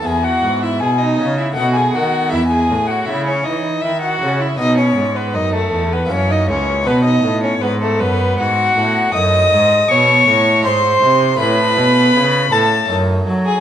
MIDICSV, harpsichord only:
0, 0, Header, 1, 2, 480
1, 0, Start_track
1, 0, Tempo, 759494
1, 27, Time_signature, 3, 2, 24, 8
1, 5787, Tempo, 750000
1, 8632, End_track
2, 0, Start_track
2, 0, Title_t, "Harpsichord"
2, 0, Program_c, 0, 6
2, 2, Note_on_c, 0, 59, 42
2, 12, Note_on_c, 0, 64, 42
2, 31, Note_on_c, 0, 40, 43
2, 248, Note_off_c, 0, 40, 0
2, 270, Note_on_c, 0, 44, 44
2, 487, Note_off_c, 0, 44, 0
2, 513, Note_on_c, 0, 47, 49
2, 717, Note_off_c, 0, 59, 0
2, 729, Note_off_c, 0, 47, 0
2, 757, Note_on_c, 0, 49, 47
2, 958, Note_off_c, 0, 64, 0
2, 965, Note_on_c, 0, 57, 44
2, 970, Note_off_c, 0, 49, 0
2, 975, Note_on_c, 0, 59, 39
2, 985, Note_on_c, 0, 63, 39
2, 995, Note_on_c, 0, 47, 44
2, 1207, Note_off_c, 0, 47, 0
2, 1229, Note_on_c, 0, 51, 43
2, 1439, Note_on_c, 0, 56, 43
2, 1440, Note_off_c, 0, 57, 0
2, 1443, Note_off_c, 0, 59, 0
2, 1444, Note_off_c, 0, 51, 0
2, 1450, Note_off_c, 0, 63, 0
2, 1450, Note_on_c, 0, 59, 43
2, 1457, Note_on_c, 0, 64, 43
2, 1471, Note_on_c, 0, 40, 43
2, 1684, Note_off_c, 0, 40, 0
2, 1685, Note_off_c, 0, 56, 0
2, 1691, Note_off_c, 0, 59, 0
2, 1705, Note_on_c, 0, 45, 48
2, 1921, Note_off_c, 0, 45, 0
2, 1946, Note_on_c, 0, 49, 49
2, 2161, Note_off_c, 0, 49, 0
2, 2186, Note_on_c, 0, 52, 48
2, 2401, Note_off_c, 0, 52, 0
2, 2426, Note_on_c, 0, 51, 46
2, 2640, Note_off_c, 0, 51, 0
2, 2666, Note_on_c, 0, 49, 47
2, 2870, Note_off_c, 0, 64, 0
2, 2878, Note_off_c, 0, 49, 0
2, 2881, Note_on_c, 0, 59, 45
2, 2892, Note_on_c, 0, 66, 45
2, 2902, Note_on_c, 0, 47, 47
2, 3115, Note_off_c, 0, 47, 0
2, 3133, Note_on_c, 0, 44, 52
2, 3350, Note_off_c, 0, 44, 0
2, 3374, Note_on_c, 0, 42, 55
2, 3590, Note_off_c, 0, 42, 0
2, 3609, Note_on_c, 0, 40, 53
2, 3820, Note_off_c, 0, 59, 0
2, 3824, Note_on_c, 0, 58, 48
2, 3826, Note_off_c, 0, 66, 0
2, 3827, Note_off_c, 0, 40, 0
2, 3832, Note_on_c, 0, 64, 47
2, 3853, Note_on_c, 0, 42, 51
2, 4069, Note_off_c, 0, 42, 0
2, 4088, Note_on_c, 0, 37, 52
2, 4302, Note_off_c, 0, 58, 0
2, 4305, Note_off_c, 0, 37, 0
2, 4307, Note_off_c, 0, 64, 0
2, 4311, Note_on_c, 0, 59, 48
2, 4320, Note_on_c, 0, 63, 45
2, 4330, Note_on_c, 0, 47, 51
2, 4546, Note_off_c, 0, 47, 0
2, 4571, Note_on_c, 0, 45, 52
2, 4787, Note_off_c, 0, 45, 0
2, 4810, Note_on_c, 0, 44, 58
2, 5029, Note_off_c, 0, 44, 0
2, 5053, Note_on_c, 0, 42, 59
2, 5273, Note_off_c, 0, 42, 0
2, 5299, Note_on_c, 0, 44, 55
2, 5519, Note_off_c, 0, 44, 0
2, 5540, Note_on_c, 0, 45, 54
2, 5750, Note_off_c, 0, 59, 0
2, 5754, Note_off_c, 0, 63, 0
2, 5757, Note_on_c, 0, 57, 53
2, 5761, Note_off_c, 0, 45, 0
2, 5768, Note_on_c, 0, 63, 50
2, 5787, Note_on_c, 0, 42, 56
2, 6004, Note_off_c, 0, 42, 0
2, 6006, Note_off_c, 0, 57, 0
2, 6026, Note_on_c, 0, 44, 51
2, 6242, Note_off_c, 0, 44, 0
2, 6264, Note_on_c, 0, 47, 61
2, 6481, Note_off_c, 0, 47, 0
2, 6499, Note_on_c, 0, 45, 63
2, 6712, Note_off_c, 0, 63, 0
2, 6713, Note_on_c, 0, 56, 48
2, 6718, Note_off_c, 0, 45, 0
2, 6721, Note_on_c, 0, 63, 54
2, 6730, Note_on_c, 0, 68, 50
2, 6740, Note_on_c, 0, 44, 55
2, 6959, Note_off_c, 0, 44, 0
2, 6980, Note_on_c, 0, 48, 57
2, 7191, Note_on_c, 0, 57, 51
2, 7193, Note_off_c, 0, 56, 0
2, 7197, Note_off_c, 0, 63, 0
2, 7198, Note_off_c, 0, 48, 0
2, 7200, Note_on_c, 0, 61, 52
2, 7202, Note_off_c, 0, 68, 0
2, 7209, Note_on_c, 0, 64, 47
2, 7221, Note_on_c, 0, 45, 59
2, 7438, Note_off_c, 0, 45, 0
2, 7459, Note_on_c, 0, 47, 57
2, 7676, Note_off_c, 0, 47, 0
2, 7695, Note_on_c, 0, 49, 65
2, 7915, Note_off_c, 0, 49, 0
2, 7937, Note_on_c, 0, 45, 62
2, 8142, Note_off_c, 0, 57, 0
2, 8146, Note_off_c, 0, 61, 0
2, 8151, Note_off_c, 0, 64, 0
2, 8151, Note_on_c, 0, 57, 50
2, 8157, Note_off_c, 0, 45, 0
2, 8161, Note_on_c, 0, 61, 51
2, 8169, Note_on_c, 0, 63, 49
2, 8181, Note_on_c, 0, 42, 54
2, 8400, Note_off_c, 0, 42, 0
2, 8421, Note_on_c, 0, 54, 55
2, 8632, Note_off_c, 0, 54, 0
2, 8632, Note_off_c, 0, 57, 0
2, 8632, Note_off_c, 0, 61, 0
2, 8632, Note_off_c, 0, 63, 0
2, 8632, End_track
0, 0, End_of_file